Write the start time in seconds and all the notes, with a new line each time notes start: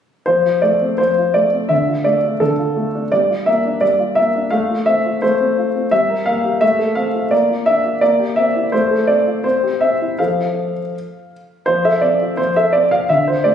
0.26 F3 C5
0.44 F4
0.62 A3 D5
0.81 C4
0.98 F3 C5
1.18 F4
1.34 A3 D5
1.53 C4
1.69 D3 E5
1.88 F4
2.04 A3 D5
2.23 D4
2.40 D3 A4
2.58 F4
2.76 A3
2.95 D4
3.12 G3 D5
3.30 F4
3.46 A#3 E5
3.65 D4
3.81 G3 D5
3.99 F4
4.15 A#3 E5
4.35 D4
4.50 A3 F5
4.69 F4
4.86 C4 E5
5.05 F4
5.22 A3 C5
5.40 C4
5.58 F4
5.75 C4
5.91 G3 E5
6.09 A#4
6.26 A#3 F5
6.45 G4
6.61 A3 E5
6.79 A4
6.95 C4 F5
7.14 F4
7.31 A#3 D5
7.50 F4
7.66 D4 E5
7.84 F4
8.01 A#3 D5
8.19 G4
8.36 C4 E5
8.55 E4
8.72 A3 C5
8.91 A4
9.07 C4 D5
9.27 F4
9.44 C4 C5
9.63 G4
9.81 C4 E5
10.01 E4
10.19 F3 F4 A4 F5
11.66 F3 C5
11.85 A4 E5
12.01 C4 D5
12.21 F4
12.37 F3 C5
12.56 A4 E5
12.73 C4 D5
12.91 F4 F5
13.09 D3 E5
13.28 F4 C5
13.44 A3 D5